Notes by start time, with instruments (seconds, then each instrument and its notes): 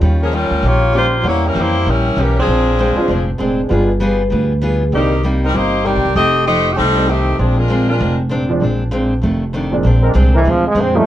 0.01 upright bass D#2, steel-string acoustic guitar D#3 G3 C#4 F4
0.23 saxophone section F3 A#3 C#4 G#4
0.31 steel-string acoustic guitar D#3 G3 C#4 F4, saxophone section G3 C#4 F4 A#4
0.51 upright bass D2
0.63 upright bass A#1, steel-string acoustic guitar D#3 G3 C#4 F4, saxophone section F4 G4 C#5
0.67 saxophone section A#3
0.93 steel-string acoustic guitar D#3 G3 C#4 F4, grand piano G3 A#3 C#4 F4, saxophone section A#3 F4 G4 C5
1.23 upright bass E2, steel-string acoustic guitar E3 A#3 C#4, grand piano G3 A#3 C#4 F#5
1.27 saxophone section A#3 E4 G4 C#5, steel-string acoustic guitar G4
1.47 saxophone section G3 C#4 E4 A#4
1.54 upright bass F2, steel-string acoustic guitar E3 A#3 C#4 G4
1.59 saxophone section A#3 E4 G4 C5
1.85 upright bass A#1, steel-string acoustic guitar E3 A#3 C#4 G4, saxophone section G3
1.89 saxophone section C#4 E4 A#4
2.16 upright bass B1, steel-string acoustic guitar E3 A#3 C#4 G4
2.20 saxophone section E3 A#3 C#4 G4
2.39 saxophone section F3 C4 D4 G#4
2.47 upright bass A#1, steel-string acoustic guitar A#2 G#3 C4 D4
2.79 steel-string acoustic guitar A#2 G#3 C4 D4
2.96 grand piano G#3 C4 D4 F4, muted upright bass stroke
3.08 upright bass F1, steel-string acoustic guitar A#2 G#3 C4 D4
3.38 upright bass F1, steel-string acoustic guitar A#2 G#3 C4 D4, grand piano G#3 C4 D4 G#4
3.69 upright bass G1, steel-string acoustic guitar G3 B3 F4 G#4, grand piano G#3 B3 D4 F4
4.00 steel-string acoustic guitar G3 B3 F4 G#4
4.30 upright bass D2, steel-string acoustic guitar G3 B3 F4 G#4
4.62 steel-string acoustic guitar G3 B3 F4 G#4
4.92 upright bass C2, steel-string acoustic guitar C3 G3 A#3 D#4, saxophone section D#3 A#3 C4 G4, grand piano G3 A#3 D4 D#4
5.24 steel-string acoustic guitar C3 G3 A#3 D#4
5.45 saxophone section G3 C4 D#4 A#4
5.54 upright bass G1, steel-string acoustic guitar C3 G3 A#3 D#4, saxophone section A#3 D#4 G4 C5
5.85 steel-string acoustic guitar C3 G3 A#3 D#4, saxophone section C4 G4 A#4 D5
5.95 upright bass A#1
6.05 upright bass C2
6.15 upright bass F1, steel-string acoustic guitar F3 A3 D#4, saxophone section C4 G4 A4 D#5
6.20 steel-string acoustic guitar G4
6.46 steel-string acoustic guitar F3 A3 D#4 G4, saxophone section A3 D#4 G4 C5
6.73 steel-string acoustic guitar F3, saxophone section G3 C4 D#4 G4 A4
6.78 upright bass C2, steel-string acoustic guitar A3 D#4 G4
6.96 grand piano G3 A3 C4 D#4
7.08 saxophone section D#3 A3 C4 G4, steel-string acoustic guitar F3 A3 D#4 G4
7.38 upright bass A#1, steel-string acoustic guitar A#2 G#3 C4 D4, saxophone section F3 C4 D4 G#4
7.58 saxophone section G#3 D4 F4 A#4
7.68 steel-string acoustic guitar A#2 G#3 C4 D4
7.89 saxophone section G#3 D4 F4 A#4
7.99 upright bass F1, steel-string acoustic guitar A#2 G#3 C4 D4
8.29 steel-string acoustic guitar A#2 G#3 C4 D4
8.49 grand piano F3 G#3 C4 D4
8.60 upright bass A#1, steel-string acoustic guitar A#2 G#3 C4 D4
8.91 steel-string acoustic guitar A#2 G#3 C4 D4
9.21 upright bass F1, steel-string acoustic guitar F2 D#3 A3 D4
9.53 steel-string acoustic guitar F2 D#3 A3 D4
9.72 grand piano A#2 F3 G#3 C4 D4
9.83 upright bass A#1, steel-string acoustic guitar A#2 G#3 C4 D4
10.02 trombone section G#3 C4 D4 A#4
10.14 upright bass C2, steel-string acoustic guitar A#2 G#3 C4 D4
10.34 trombone E3, trombone section G#3 C4 D4 A#4
10.44 upright bass D2, steel-string acoustic guitar A#2 G#3 C4 D4
10.50 trombone F3
10.67 trombone G#3
10.74 upright bass F2, steel-string acoustic guitar A#2 G#3 C4 D4
10.81 trombone C4
10.94 grand piano F3 G3 A#3 C#4 D#4, trombone A3